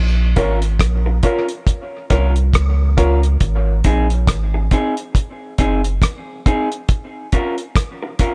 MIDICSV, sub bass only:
0, 0, Header, 1, 2, 480
1, 0, Start_track
1, 0, Key_signature, -5, "minor"
1, 0, Tempo, 869565
1, 1881, Time_signature, 4, 2, 24, 8
1, 4606, End_track
2, 0, Start_track
2, 0, Title_t, "Sub bass"
2, 0, Program_c, 0, 38
2, 0, Note_on_c, 0, 34, 117
2, 190, Note_off_c, 0, 34, 0
2, 207, Note_on_c, 0, 32, 86
2, 432, Note_off_c, 0, 32, 0
2, 442, Note_on_c, 0, 34, 90
2, 669, Note_off_c, 0, 34, 0
2, 1165, Note_on_c, 0, 36, 97
2, 1391, Note_off_c, 0, 36, 0
2, 1402, Note_on_c, 0, 37, 95
2, 1860, Note_off_c, 0, 37, 0
2, 1885, Note_on_c, 0, 32, 115
2, 2111, Note_off_c, 0, 32, 0
2, 2126, Note_on_c, 0, 34, 79
2, 2351, Note_off_c, 0, 34, 0
2, 2363, Note_on_c, 0, 32, 89
2, 2590, Note_off_c, 0, 32, 0
2, 3087, Note_on_c, 0, 30, 81
2, 3313, Note_off_c, 0, 30, 0
2, 4606, End_track
0, 0, End_of_file